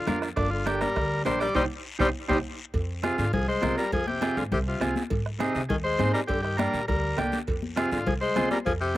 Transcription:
Already playing: D3 F4
0.07 F2 D4 F4 A#4, bombo rim, cowbell, high conga, low conga, low timbale, short guiro
0.22 bombo rim, short guiro
0.36 G1 A#2 D4, bombo low, bombo rim, cowbell, high conga, long guiro
0.50 D3 F4
0.66 D3 D4 G4 A#4, bombo rim, cowbell, high conga, short guiro
0.81 G3 A#4, bombo rim, high conga, short guiro
0.96 D2, bombo low, bombo rim, cowbell, long guiro
1.25 A#1 G3 D4 G4 A#4 C5, bombo rim, cowbell, high conga, low timbale, short guiro
1.40 G3 D5, bombo rim, short guiro
1.55 C2 G3 D#4 G4 C5, bombo low, high conga, high timbale, long guiro
1.99 C2 G3 D#4 G4 C5, bombo low, high conga, high timbale
2.28 C2 G3 D#4 G4 C5, bombo low, high conga, high timbale, long guiro
2.74 F2, bombo low, cowbell, high conga, long guiro
3.03 C3 C4 F4 G#4, bombo rim, cowbell, high conga, short guiro
3.17 G#2 D3 F4, short guiro
3.33 C2 F3 G#4, bombo low, cowbell, high conga, low conga, long guiro
3.48 G#3 C5
3.62 C2 C4 F4 A#4, bombo low, bombo rim, cowbell, high conga, low conga, low timbale, short guiro
3.78 G3 A#4, short guiro
3.92 F2 F3 G#4, bombo low, cowbell, high conga, low conga, long guiro
4.07 C3 G4, high conga
4.21 C4 F4 G#4, bombo rim, cowbell, high conga, short guiro
4.37 G#2 D3 F4, short guiro
4.52 C2 C3 G4, bombo low, cowbell, high conga, low conga, long guiro
4.67 C3 F4
4.80 C2 C4 F4 G#4, bombo rim, cowbell, high conga, short guiro
4.96 high conga, short guiro
5.10 G#2, bombo low, cowbell, high conga, low conga, long guiro
5.26 bombo rim
5.39 C3 C4 D#4 G#4, bombo rim, cowbell, high conga, short guiro
5.54 C3 D#4, short guiro
5.69 D#2 D#3 G#4, bombo low, cowbell, high conga, low conga, long guiro
5.84 G#3 C5
5.99 G#2 C4 D#4 G#4, bombo rim, cowbell, high conga, low conga, low timbale, short guiro
6.13 G3 A#4, short guiro
6.27 G2 D3 G4, bombo low, cowbell, high conga, long guiro
6.42 D#3 G4, bombo rim
6.57 G3 A#3 D4 G4 A#4, bombo rim, cowbell, high conga, short guiro
6.74 A#2, short guiro
6.88 D2 G3 A#4, bombo low, cowbell, high conga, low conga, long guiro
7.17 C2 D3 A#3 D4 G4, bombo rim, cowbell, high conga, short guiro
7.32 high conga, short guiro
7.47 F2, bombo low, cowbell, high conga, long guiro
7.63 high conga
7.76 C3 C4 F4 G#4, bombo rim, cowbell, high conga, short guiro
7.92 G#2 D3 F4, short guiro
8.06 C2 F3 G#4, bombo low, cowbell, high conga, low conga, long guiro
8.21 G#3 C5
8.35 C2 C4 F4 G#4, bombo rim, cowbell, high conga, low conga, short guiro
8.51 G3 A#4, high conga, short guiro
8.66 F2 F3 G#4, bombo low, cowbell, high conga, long guiro
8.80 C3 G4

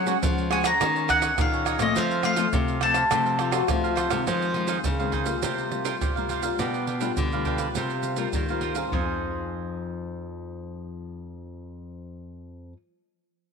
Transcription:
Already playing: F#3 F#5
0.06 G#3 C#4 F#4 G#4 C#5 F#5, pandeiro, shaker
0.22 C#3 F3, pandeiro, shaker, surdo
0.38 pandeiro, shaker
0.50 G#3 C#4 F#4 G#4 C#5 F#5 G#5, pandeiro, tamborim
0.64 G#4 C#5 F#5 A#5, pandeiro, tamborim, shaker
0.80 D#3 A#3 C#4 D#4 G#4 C#5 D#5, pandeiro, tamborim, shaker, surdo
0.96 G#4 C#5 D#5, pandeiro, shaker
1.08 D#4 G#4 C#5 D#5 F#5, pandeiro, tamborim, shaker, surdo
1.21 D#4 G#4 C#5 D#5, pandeiro, tamborim, shaker
1.38 A#2 D#3 A#3 C#4 G#4 F5, pandeiro, tamborim, shaker, surdo
1.52 G#4 C#5 D#5, pandeiro, shaker
1.65 D#4 G#4 C#5 D#5, pandeiro, tamborim, shaker
1.79 A#2 F3 A3 C4 G#4 C#5 D#5, pandeiro, tamborim, shaker
1.94 F2 F3 F4 A4 C5 F5, pandeiro, shaker, surdo
2.11 pandeiro, shaker
2.22 F3 A3 C4 F4 A4 C5 F5, pandeiro, tamborim, shaker
2.36 F3 A3 C4 F4 A4 C5 F5, pandeiro, shaker
2.53 C3, pandeiro, shaker, surdo
2.68 pandeiro, shaker
2.81 F3 A3 C4 F4 A4 C5 F5 A5, pandeiro, tamborim
2.94 A4 C5 F5, pandeiro, tamborim, shaker
3.11 F2 C3 F3 A3 C4 F4 A4 C5 F5, pandeiro, tamborim, shaker, surdo
3.25 A4 C5 F5, pandeiro, shaker
3.38 F4 A4 C5 F5, pandeiro, tamborim
3.51 F4 F#4 A4 C5 F5, pandeiro, tamborim, shaker
3.68 C3 F3 A3 C4 F4, pandeiro, tamborim, shaker, surdo
3.84 A4 C5 F5, pandeiro, shaker
3.95 F4 A4 C5 F5, pandeiro, tamborim, shaker
4.10 C3 D#3 G#3 C4 A4 C5 F5, pandeiro, tamborim, shaker
4.27 F2 F3 D#4 G#4 C5 F5, pandeiro, shaker, surdo
4.42 pandeiro, shaker
4.54 D#3 G#3 C4 D#4 G#4 C5 F5, pandeiro
4.67 D#4 G#4 C5 F5, pandeiro, shaker
4.84 C#3, pandeiro, shaker, surdo
4.99 D#3 G#3 C4 G#4 C5 F5, pandeiro, shaker
5.12 D#4 G#4 C5 F5, pandeiro, surdo
5.26 G3 A#3 F4 G#4 C5 F5, pandeiro, shaker
5.42 C3 F4 A#4 C5 F5, pandeiro, shaker, surdo
5.58 pandeiro, shaker
5.71 G3 A#3 F4, pandeiro
5.85 F4 A#4 C5 F5, pandeiro, shaker
6.01 G2 C3 F4 A#4 C5 F5, pandeiro, shaker, surdo
6.16 G3 A#3 F4 A#4 C5 F5, pandeiro, shaker
6.29 F4 A#4 C5 F5, pandeiro, shaker
6.43 G3 D4 F4 A#4 C5 F5, pandeiro, shaker
6.59 B2 D4 G4 B4 F5, pandeiro, shaker, surdo
6.74 pandeiro, shaker
6.87 D4 G4 B4 F5, pandeiro
7.00 G3 D4 F4 G4 B4 F5, pandeiro, shaker
7.17 B2 D3, pandeiro, shaker, surdo
7.32 G3 D4 F4 G4 B4 F5, pandeiro, shaker
7.45 D4 G4 B4 F5, pandeiro, surdo
7.58 G3 A#3 F4 G4 B4 F5, pandeiro, shaker
7.75 C3 F4 A#4 C5 F5, pandeiro, shaker, surdo
7.90 pandeiro, shaker
8.03 pandeiro, shaker
8.16 G3 A#3 F4 A#4 C5 F5, pandeiro, shaker
8.33 G2 D#3 F4 A#4 C5 F5, pandeiro, shaker, surdo
8.49 G3 A#3 F4 A#4 C5 F5, pandeiro, shaker
8.61 F4 A#4 C5 F5, pandeiro
8.75 C4 D#4 G#4 A#4 C5 F5, pandeiro, shaker
8.88 F3 D#4, surdo
8.93 F2 C4 G#4 C5 F5
8.99 D#4
9.03 G#4

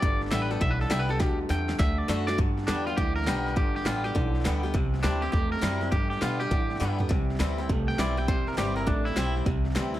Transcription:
Already playing: D5
0.02 G1 G2 D3, kick, snare
0.21 snare
0.26 snare
0.31 A1 G2 D3 G3 B3 G4 E5, snare, hi-hat pedal
0.42 B4
0.51 B3 G4 A4, snare
0.61 B1 G2 D3 E3 E5, kick, snare
0.71 B4
0.81 A4, snare
0.86 snare
0.90 C2 G2 D3 G3 B3 G4 E5, snare, hi-hat pedal
0.99 B4
1.09 B3 G4 A4, snare
1.20 D2 G2 B2 D3 G4, kick, snare
1.49 E2 G2 C3 D3 G5, snare, hi-hat pedal
1.69 snare
1.79 D2 D3 A3 E5, kick, snare
1.98 D5
2.08 F#2 D3 A3 D4 F#4 E5, snare, hi-hat pedal
2.27 D4 F#4 D5, snare
2.38 G2 D3, kick, snare
2.58 snare
2.63 D4, snare
2.68 E2 G2 D3 G3 B3 G4, snare, hi-hat pedal
2.87 B3 F4 G4, snare
2.97 D2 G2 D3 E3 G4, kick, snare
3.16 A#4, snare
3.22 snare
3.27 B1 G2 D3 G3 B3 G4, snare, hi-hat pedal
3.47 snare
3.56 G1 G2 D3 G4, kick, snare
3.76 G4, snare
3.81 G2 D3, snare
3.85 A1 D3 G3 B3 F4 G4, snare, hi-hat pedal
4.04 B3 G4, snare
4.15 B1 G2 D3 E3, kick, snare
4.35 snare
4.40 snare
4.45 D2 G2 D3 G3 B3 G4, snare, hi-hat pedal
4.63 B3 G4, snare
4.74 C2 C3 G3, kick, snare
4.94 snare
4.99 E3 D4, snare
5.03 D2 C3 G3 C4 E4, snare, hi-hat pedal
5.22 C4 E4 G4, snare
5.32 E2 G2 C3 A3 G4, kick, snare
5.52 A#4, snare
5.57 E3, snare
5.62 F#2 C3 G3 C4 E4, snare, hi-hat pedal
5.81 C4 E4, snare
5.92 G2 D3 G4, kick, snare
6.10 G4, snare
6.16 snare
6.21 G2 B2 D3 G3 B3 F4 G4, snare, hi-hat pedal
6.40 B3 G4, snare
6.51 G2 A2 D3 E3, kick, snare
6.70 snare
6.76 snare
6.80 G2 D3 G3 B3 G4, snare, hi-hat pedal
6.98 B3 G4, floor tom
7.09 C2 C3 G3, kick, snare
7.30 snare
7.35 snare
7.39 D2 C3 E3 G3 C4 E4, snare, hi-hat pedal
7.58 C4 E4, snare
7.69 C2 G2 C3 A3, kick, snare
7.88 G5, snare
7.94 snare
7.98 B1 C3 E3 G3 C4 E4 D5, snare, hi-hat pedal
8.17 C4 E4 G5, snare
8.28 E1 C3 G3 C5, kick, snare
8.47 A#4, snare
8.53 E3, snare
8.57 G1 C3 G3 C4 E4 G4, snare, hi-hat pedal
8.76 C4 E4 A#4, snare
8.87 A1 G2 C3 A3 D4, kick, snare
9.05 E4, snare
9.12 snare
9.16 B1 C3 E3 G3 C4 E4, snare, hi-hat pedal
9.36 snare
9.46 C2 C3 G3, kick, snare
9.65 snare
9.70 snare
9.75 D2 C3 E3 G3 C4 E4, snare, hi-hat pedal
9.94 C4 E4, snare

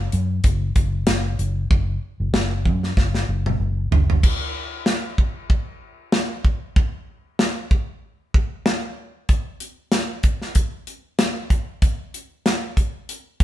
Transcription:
0.12 F#2, closed hi-hat
0.44 F#1, kick, closed hi-hat
0.76 F#1, kick, closed hi-hat
1.07 F#1, snare, closed hi-hat
1.39 F#1, closed hi-hat
1.70 F#1, kick
2.20 F#1
2.33 F#1, snare
2.65 F#2, kick
2.83 snare
2.97 F#1, kick, snare
3.15 snare
3.29 F#1
3.46 high tom
3.60 F#1
3.91 F#1, floor tom
4.10 floor tom
4.23 kick, crash
4.86 snare
5.18 kick
5.50 kick
6.12 snare
6.45 kick
6.76 kick
7.39 snare
7.71 kick
8.34 kick
8.66 snare
9.29 kick, closed hi-hat
9.60 closed hi-hat
9.92 snare, closed hi-hat
10.23 kick, closed hi-hat
10.42 snare
10.55 kick, closed hi-hat
10.87 closed hi-hat
11.19 snare, closed hi-hat
11.50 kick, closed hi-hat
11.82 kick, closed hi-hat
12.14 closed hi-hat
12.46 snare, closed hi-hat
12.77 kick, closed hi-hat
13.09 closed hi-hat
13.40 kick, closed hi-hat

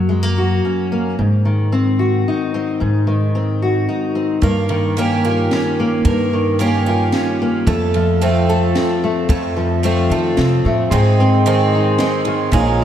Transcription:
Already playing: F#2 F#3 F#4
0.09 G#3
0.23 A#3
0.38 F#4
0.65 C#4
0.92 A#3
1.19 G#2
1.45 D#3
1.72 C4
1.99 F#4
2.28 D#4
2.54 C4
2.80 G#2
3.07 D#3
3.35 C4
3.62 F#4
3.89 D#4
4.15 C4
4.42 G2 A#3, kick, ride
4.69 D#3, ride
4.97 A#3 C#4 G4, ride
5.25 A#3 F4
5.51 C#4, snare, ride
5.80 A#3
6.05 G2 A#3, kick, ride
6.33 D#3
6.59 A#3 C#4 G4, ride
6.86 A#3 F4
7.12 C#4, snare, ride
7.42 A#3
7.67 F2 A3, kick, ride
7.94 F3, ride
8.21 A3 C4 F4, ride
8.49 A3 A4
8.75 C4, snare, ride
9.04 A3
9.29 F2 A3, kick, ride
9.57 F3
9.83 A3 C4 F4, ride
10.10 D#3 A3 A4
10.37 C3 C4, snare, ride
10.65 A2 A3
10.90 G#2 D#3 C4 G#4 D#5 C6, kick, ride
11.20 C4
11.46 D#3 G#3 C4, ride
11.75 D#4
11.98 G#3 C4, snare, ride
12.25 D#3, ride
12.52 A#1 A#2 G#3 F4 C#5 A#5, kick, ride

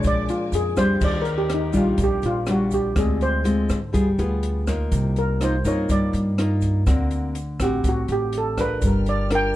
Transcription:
Already playing: F3 G#3 D4 D6
0.03 A#1 A#2 A#4 G#5, kick, closed hi-hat, shaker
0.07 D5
0.29 F4, closed hi-hat, shaker
0.52 F2 G#4, closed hi-hat, shaker
0.76 G3 D4 F4 C5, kick, cross-stick, closed hi-hat, shaker
1.00 D#2 D#3, kick, crash, shaker
1.04 D5
1.22 A#4, closed hi-hat, shaker
1.38 G4
1.50 cross-stick, closed hi-hat
1.54 D#4
1.72 A#1 G3 D4 F4, kick, closed hi-hat, shaker
1.77 F4
1.98 A#1 A#2, kick, closed hi-hat, shaker
2.04 G4
2.22 A#1 F4, closed hi-hat, shaker
2.46 G3 D4 F4, cross-stick, closed hi-hat, shaker
2.51 F#4
2.71 G4, kick, closed hi-hat, shaker
2.95 D2 D3 G#3 C4 F4 G#4, kick, cross-stick, closed hi-hat, shaker
3.21 C5, closed hi-hat, shaker
3.44 G#3 C4 F4, closed hi-hat, shaker
3.69 G#2, kick, cross-stick, closed hi-hat, shaker
3.93 G1 G3 B3 F4 G#4, kick, closed hi-hat, shaker
4.18 D2 B3 F4 G#4, closed hi-hat, shaker
4.43 closed hi-hat
4.67 A#3 D#4 F4, kick, cross-stick, closed hi-hat, shaker
4.92 C2 C3, kick, closed hi-hat, shaker
5.16 A#4, closed hi-hat, shaker
5.41 A#3 D#4 F4 C5, cross-stick, closed hi-hat, shaker
5.64 G2 A#3 D#4 F4 C#5, kick, closed hi-hat, shaker
5.89 G2 G3 D5, kick, closed hi-hat, shaker
6.13 G2, closed hi-hat, shaker
6.38 A#3 D#4 F4, cross-stick, closed hi-hat
6.61 kick, closed hi-hat, shaker
6.86 D2 D3 A#3 C4 F#4, kick, cross-stick, closed hi-hat, shaker
7.11 closed hi-hat, shaker
7.35 closed hi-hat, shaker
7.60 A1 C4 F#4, kick, cross-stick, closed hi-hat, shaker
7.64 G4
7.84 A1 A2, kick, closed hi-hat, shaker
7.89 F#4
8.08 A1, closed hi-hat, shaker
8.12 G4
8.33 closed hi-hat
8.38 A4
8.57 D4 F4 A#4 B4, kick, cross-stick, closed hi-hat, shaker
8.82 G1 G3 A#4 G5 F6, kick, closed hi-hat, shaker
8.87 A#4
9.06 D5, closed hi-hat, shaker
9.30 D4 F4 A#4, cross-stick, closed hi-hat
9.35 G5

